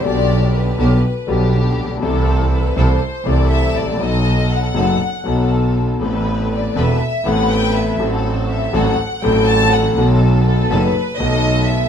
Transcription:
<<
  \new Staff \with { instrumentName = "Violin section" } { \time 4/4 \key a \dorian \tempo 4 = 121 d''4 b'2 r4 | r4 b'8 c''4 d''8 e''8 d''8 | dis''4 fis''2 r4 | r4 d''8 e''4 fis''8 g''8 e''8 |
r4 e''8 fis''4 g''8 a''8 fis''8 | r4 a'8 b'4 dis''4 e''8 | }
  \new Staff \with { instrumentName = "String section" } { \time 4/4 \key a \dorian <b d' g'>4. <b d' g'>8 r8 <b d' g'>4. | <c' e' a'>4. <c' e' a'>8 r8 <c' e' a'>4. | <b dis' a'>4. <b dis' a'>8 r8 <b dis' a'>4. | <a' b'>4. <c' a' b'>8 r8 <a' b'>4. |
<c' fis' a'>4. <c' fis' a'>8 r8 <c' fis' a'>4. | <b dis' a'>4. <b dis' a'>8 r8 <b dis' a'>4. | }
  \new Staff \with { instrumentName = "Grand piano" } { \clef bass \time 4/4 \key a \dorian << { <b,, b, d g b g'>4. <b,, b, d g b g'>8 r8 <b,, b, d g b g'>4. | <c, c e a c' a'>4. <c, c e a c' a'>8 r8 <c, c e a c' a'>4. | <b,, b, fis b dis' a'>4. <fis,, fis, fis b dis' a'>8 r8 <b,, b, fis b dis' a'>4. | <a,, a, e b c' a'>4. <e,, e, e b c' a'>8 r8 <a,, a, e b c' a'>4. |
<a,, a, fis a c' a'>4. <a,, a, fis a c' a'>8 r8 <a,, a, fis a c' a'>4. | <b,, b, dis a b fis'>4. <fis,, fis, dis a b fis'>8 r8 <b,, b, dis a b fis'>4. | } \\ { r2. r8 r32 a,,32 ais,,32 b,,32 | r2. r8 r32 gis,,32 a,,32 ais,,32 | r1 | r1 |
r1 | r1 | } >> }
  \new Staff \with { instrumentName = "Double bass" } { \clef bass \time 4/4 \key a \dorian b,,4. b,,8 r8 b,,4 ais,,8 | c,4. c,8 r8 c,4 a,,8 | b,,4. fis,,8 r8 b,,4. | a,,4. e,,8 r8 a,,4. |
a,,4. a,,8 r8 a,,4. | b,,4. fis,,8 r8 b,,4. | }
>>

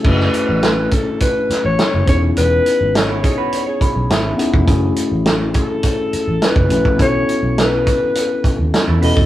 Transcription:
<<
  \new Staff \with { instrumentName = "Alto saxophone" } { \time 4/4 \key fis \dorian \tempo 4 = 104 b'4. a'8 b'8. cis''8. cis''8 | b'4 cis''2 r4 | r4. a'4. b'4 | cis''4 b'2 r8 dis''8 | }
  \new Staff \with { instrumentName = "Clean electric guitar" } { \time 4/4 \key fis \dorian r1 | r4 r16 <b e'>16 <dis' gis'>16 <fis' b'>8 <gis' cis''>4. r16 | r1 | r2. r16 <e' a'>16 <fis' b'>16 <e' a'>16 | }
  \new Staff \with { instrumentName = "Tine electric piano" } { \time 4/4 \key fis \dorian <a cis' e' fis' gis'>4 r2 r8 <b cis' dis' e' gis'>8~ | <b cis' dis' e' gis'>4 r4. b''8 e''8 <b cis' dis' e' gis' fis''>8 | <a cis' e' fis' gis'>4 r2 r8 <a cis' e' fis' b'>8 | <b cis' e' fis' a'>4 r2 r8 <b cis' e' fis' a'>8 | }
  \new Staff \with { instrumentName = "Fingered electric bass" } { \clef bass \time 4/4 \key fis \dorian fis,,8 r16 a,,4 r4 a,,16 r16 fis,,16 e,,8 | e,,8 r16 gis,,4 r4 b,,16 gis,,8 r16 eis,,16 | fis,,8 r16 a,,4 r4 a,,16 r16 fis,,16 ais,,8 | b,,8 r16 b,,4 r4 dis,16 r16 e,16 e,,16 eis,,16 | }
  \new DrumStaff \with { instrumentName = "Drums" } \drummode { \time 4/4 <cymc bd>16 sn16 hh8 <hh sn>8 <hh bd>8 <hh bd>8 <hh sn>8 <hh sn>8 <hh bd>8 | hh8 hh8 <hh sn>8 <hh bd>8 hh8 <hh bd>8 <hh sn>8 hh16 bd16 | <hh bd>8 hh8 <hh sn>8 <hh bd>8 <hh bd>8 hh8 <hh sn>16 bd16 hh16 bd16 | <hh bd>8 hh8 <hh sn>8 <hh bd>8 hh8 <hh bd>8 <hh sn>8 hho16 bd16 | }
>>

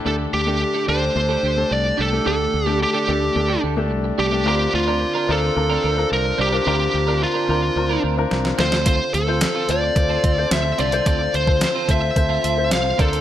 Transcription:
<<
  \new Staff \with { instrumentName = "Lead electric guitar" } { \time 4/4 \key f \major \tempo 4 = 109 a'8 g'4 c''4. d''8 a'8 | a'4 g'4. r4 g'8 | g'8 f'4 a'4. bes'8 g'8 | g'4 f'4. r4 c''8 |
c''8 a'4 d''4. e''8 d''8 | d''8 c''4 e''4. f''8 a'8 | }
  \new Staff \with { instrumentName = "Clean electric guitar" } { \time 4/4 \key f \major <d' g' a'>16 r8 <d' g' a'>16 r16 <d' g' a'>16 <d' g' a'>16 r8 <d' g' a'>16 <d' g' a'>16 r8. <d' g' a'>16 <d' g' a'>16 | <d' g' a'>16 r8 <d' g' a'>16 r16 <d' g' a'>16 <d' g' a'>16 r8 <d' g' a'>16 <d' g' a'>16 r8. <d' g' a'>16 <d' g' a'>16 | <c' d' bes'>16 r8 <c' d' bes'>16 r16 <c' d' bes'>16 <c' d' bes'>16 r8 <c' d' bes'>16 <c' d' bes'>16 r8. <c' d' bes'>16 <c' d' bes'>16 | <c' d' bes'>16 r8 <c' d' bes'>16 r16 <c' d' bes'>16 <c' d' bes'>16 r8 <c' d' bes'>16 <c' d' bes'>16 r8. <c' f' a'>16 <c' f' a'>16 |
<c' f' a'>16 r8 <c' f' a'>16 r16 <c' f' a'>16 <c' f' a'>16 r8 <c' f' a'>16 <c' f' a'>16 r8. <c' f' a'>16 <c' f' a'>16 | <c' f' a'>16 r8 <c' f' a'>16 r16 <c' f' a'>16 <c' f' a'>16 r8 <c' f' a'>16 <c' f' a'>16 r8. <c' d' bes'>16 <c' d' bes'>16 | }
  \new Staff \with { instrumentName = "Grand piano" } { \time 4/4 \key f \major <a d' g' a'>8 r16 <a d' g' a'>8 r16 <a d' g' a'>16 r16 <a d' g' a'>8 r16 <a d' g' a'>8. r16 <a d' g' a'>16 | <a d' g' a'>8 r16 <a d' g' a'>8 r16 <a d' g' a'>16 r16 <a d' g' a'>8 r16 <a d' g' a'>8. r16 <a d' g' a'>16 | <c' d' f' bes'>8 r16 <c' d' f' bes'>8 r16 <c' d' f' bes'>16 r16 <c' d' f' bes'>8 r16 <c' d' f' bes'>8. r16 <c' d' f' bes'>16 | <c' d' f' bes'>8 r16 <c' d' f' bes'>8 r16 <c' d' f' bes'>16 r16 <c' d' f' bes'>8 r16 <c' d' f' bes'>8. <c' f' a' c''>8~ |
<c' f' a' c''>8 r16 <c' f' a' c''>8 r16 <c' f' a' c''>16 r16 <c' f' a' c''>8 r16 <c' f' a' c''>8. r16 <c' f' a' c''>16 | <c' f' a' c''>8 r16 <c' f' a' c''>8 r16 <c' f' a' c''>16 r16 <c' f' a' c''>8 r16 <c' f' a' c''>8. <d' f' bes' c''>8 | }
  \new Staff \with { instrumentName = "Grand piano" } { \clef bass \time 4/4 \key f \major d4. r2 r8 | d4. r2 r8 | d4. r2 r8 | d4. r2 d8~ |
d4 r2 r8 d8~ | d4 r2 r8 d8 | }
  \new Staff \with { instrumentName = "Fretless electric bass" } { \clef bass \time 4/4 \key f \major d,8 d,8. r16 d,8 d,8 d,8 c,8 c,8 | d,8 d,8. r16 d,8 d,8 d,8 c,8 c,8 | d,8 d,8. r16 d,8 d,8 d,8 c,8 c,8 | d,8 d,8. r16 d,8 d,8 d,8 c,8 d,8~ |
d,8 d,8. r16 d,8 d,8 d,8 d,8 c,8 | d,8 d,8. r16 d,8 d,8 d,8 c,8 d,8 | }
  \new DrumStaff \with { instrumentName = "Drums" } \drummode { \time 4/4 r4 r4 r4 r4 | r4 r4 r4 r4 | r4 r4 r4 r4 | r4 r4 r4 sn16 sn16 sn16 sn16 |
<hh bd>8 hh8 <hh sn>8 hh8 <hh bd>8 <hh bd>8 <hh sn>8 hh16 hh16 | <hh bd>8 hh16 bd16 <hh sn>8 <hh bd>8 <hh bd>8 hh8 <hh sn>8 <hh bd>16 hh16 | }
>>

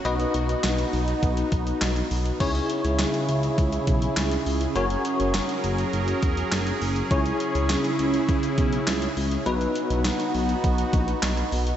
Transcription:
<<
  \new Staff \with { instrumentName = "Tine electric piano" } { \time 4/4 \key cis \dorian \tempo 4 = 102 <dis' fis' b' dis''>1 | <cis' e' gis' cis''>1 | <cis' fis' ais' cis''>1 | <cis' e' gis' cis''>1 |
<b dis' fis' b'>1 | }
  \new Staff \with { instrumentName = "Analog synth pad" } { \time 4/4 \key cis \dorian << { <dis' fis'>1 | <cis e' gis'>1 | <fis ais'>1 | <cis e'>1 |
<dis' fis'>1 | } \\ { b1 | cis'1~ | cis'1~ | cis'1 |
b1 | } >> }
  \new Staff \with { instrumentName = "Analog synth bass" } { \clef bass \time 4/4 \key cis \dorian b,,8 b,,8 b,,8 b,,8 b,,8 b,,8 b,,8 b,,8 | cis,8 r16 cis,8 r16 cis,8 cis,8 b,,8 cis,8 cis,8 | fis,,8 r16 fis,,8 r16 fis,,8 fis,,8 e,,8 fis,,8 fis,,8 | cis,8 r16 cis,8 r16 cis,8 cis,8 b,,8 cis,8 cis,8 |
b,,8 r16 b,,8 r16 b,,8 b,,8 ais,,8 b,,8 b,,8 | }
  \new DrumStaff \with { instrumentName = "Drums" } \drummode { \time 4/4 hh16 hh16 hh16 hh16 <hc hh sn>16 hh16 hho16 hh16 <hh bd>16 hh16 <hh bd>16 hh16 <hc hh sn>16 hh16 hho16 hh16 | <cymc hh bd>16 hh16 hh16 hh16 <hc hh sn>16 hh16 hh16 hh16 <hh bd>16 hh16 <hh bd>16 hh16 <hc hh sn>16 hh16 hho16 hh16 | hh16 hh16 hh16 hh16 <hc hh sn>16 hh16 hh16 hh16 hh16 hh16 <hh bd>16 hh16 <hc hh sn>16 hh16 hho16 hh16 | <hh bd>16 hh16 hh16 hh16 <hc hh sn>16 hh16 hh16 hh16 <hh bd>16 hh16 <hh bd>16 hh16 <hc hh sn>16 hh16 hho16 hh16 |
hh16 hh16 hh16 hh16 <hc hh sn>16 hh16 hho16 hh16 <hh bd>16 hh16 <hh bd>16 hh16 <hc hh sn>16 hh16 hho16 hh16 | }
>>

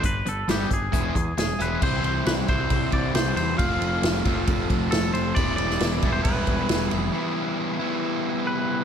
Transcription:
<<
  \new Staff \with { instrumentName = "Clean electric guitar" } { \time 4/4 \key e \phrygian \tempo 4 = 135 b'8 a'8 g'8 gis'4. gis'8 b'8 | c''8 c''8 b'8 c''4 d''8 c''8 c''8 | f''2 r4 a'8 c''8 | d''8 d''4~ d''16 c''16 b'2~ |
b'2. b'4 | }
  \new Staff \with { instrumentName = "Overdriven electric guitar" } { \time 4/4 \key e \phrygian r4 <d g b d'>8 r8 <e gis b e'>8 r4 <e gis b e'>8 | <c e g c' e'>4. <c e g c' e'>2~ <c e g c' e'>8 | <f a c' f'>4. <f a c' f'>2~ <f a c' f'>8 | <e g b e'>4. <e g b e'>2~ <e g b e'>8 |
<e g b e'>4. <e g b e'>2~ <e g b e'>8 | }
  \new Staff \with { instrumentName = "Picked electric bass" } { \clef bass \time 4/4 \key e \phrygian g,,8 g,,8 g,,8 g,,8 e,,8 e,8 e,,8 e,,8 | c,8 c,8 c,8 c,8 c,8 c,8 c,8 e,8 | f,,8 f,,8 f,,8 f,,8 f,,8 f,,8 f,,8 f,,8 | e,,8 e,,8 e,,8 e,,8 e,,8 e,,8 e,,8 f,,8 |
r1 | }
  \new DrumStaff \with { instrumentName = "Drums" } \drummode { \time 4/4 <hh bd>8 hh8 <hh sn>8 <hh bd>8 <hh bd>8 <hh bd>8 <hh sn>8 hh8 | <cymc bd>8 cymr8 <cymr sn>8 <bd cymr>8 <bd cymr>8 <bd cymr>8 <cymr sn>8 cymr8 | <bd cymr>8 cymr8 <cymr sn>8 <bd cymr>8 <bd cymr>8 <bd cymr>8 <cymr sn>8 cymr8 | <bd cymr>8 cymr16 sn16 <cymr sn>8 <bd cymr>8 <bd cymr>8 <bd cymr>8 <cymr sn>8 cymr8 |
r4 r4 r4 r4 | }
>>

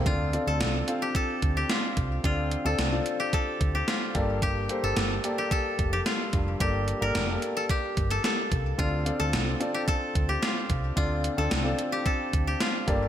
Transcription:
<<
  \new Staff \with { instrumentName = "Grand piano" } { \time 4/4 \key d \minor \tempo 4 = 110 <c' f' a' d''>8 <c' f' a' d''>4 <c' f' a' f''>4.~ <c' f' a' f''>16 r8. | <c' f' a' d''>8. <c' f' a' d''>8 <c' f' a' d''>4.~ <c' f' a' d''>16 r8 <bes g' a' d''>8~ | <bes g' a' d''>8 <bes g' a' c''>4 <bes g' a' d''>4.~ <bes g' a' d''>16 r8. | <bes g' a' d''>8. <bes g' a' d''>8 <bes g' a' d''>4.~ <bes g' a' d''>16 r4 |
<c' f' a' d''>8 <c' f' a' d''>4 <c' f' a' d''>4.~ <c' f' a' d''>16 r8. | <c' f' a' d''>8. <c' f' a' d''>8 <c' f' a' d''>4.~ <c' f' a' d''>16 r8 <bes g' a' d''>8 | }
  \new Staff \with { instrumentName = "Grand piano" } { \clef bass \time 4/4 \key d \minor d4. r2 r8 | d4. r2 g,8~ | g,4 r2 r8 g,8~ | g,4 r2. |
d4. r2 r8 | d4. r2 g,8 | }
  \new Staff \with { instrumentName = "Koto" } { \time 4/4 \key d \minor f'8. a'4 g'16 a'8. g'16 f'8. r16 | f'8. a'4 g'16 a'8. g'16 f'8. r16 | g'8. a'4 g'16 a'8. g'16 f'8. r16 | g'8. bes'4 a'16 g'8. a'16 a'8. r16 |
f'8. a'4 g'16 a'8. g'16 f'8. r16 | f'8. a'4 g'16 a'8. g'16 f'8. r16 | }
  \new Staff \with { instrumentName = "Fretless electric bass" } { \clef bass \time 4/4 \key d \minor d,8. d,16 c,8 r4 d,8 r8 c,8 | d,8. d,16 c,8 r4 d,8 r8 g,,8~ | g,,8. g,,16 g,,8 r4 f,,8 r8 f,,8 | g,,8. g,,16 f,,8 r4 g,,8 r8 c,8 |
d,8. d,16 c,8 r4 d,8 r8 c,8 | d,8. d,16 c,8 r4 d,8 r8 g,,8 | }
  \new DrumStaff \with { instrumentName = "Drums" } \drummode { \time 4/4 <hh bd>8 hh8 <hh sn>8 hh8 <hh bd>8 <hh bd>8 <hh sn>8 <hh bd>8 | <hh bd>8 hh8 <hh sn>8 hh8 <hh bd>8 <hh bd>8 <hh sn>8 <hh bd>8 | <hh bd>8 hh8 <hh sn>8 hh8 <hh bd>8 <hh bd>8 <hh sn>8 <hh bd>8 | <hh bd>8 hh8 <hh sn>8 hh8 <hh bd>8 <hh bd>16 hh16 <hh sn>8 <hh bd>8 |
<hh bd>8 hh8 <hh sn>8 hh8 <hh bd>8 <hh bd>8 <hh sn>8 <hh bd>8 | <hh bd>8 hh8 <hh sn>8 hh8 <hh bd>8 <hh bd>8 <hh sn>8 <hh bd>8 | }
>>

